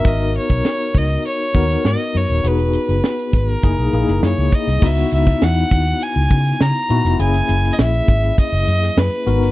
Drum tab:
CC |----------------|----------------|x---------------|----------------|
HH |xxxx-xxxxxxx-xxx|xxxx-xxxxxxx-xxx|-xxx-xxxxxxx-xxx|xxxx-xxxxxxx-xxx|
SD |----o-------o---|----o------oo--o|----o-------o--o|----o------oo--o|
BD |o--o--o---o-----|------o-o-----o-|o--o--o---o-----|------o-o-------|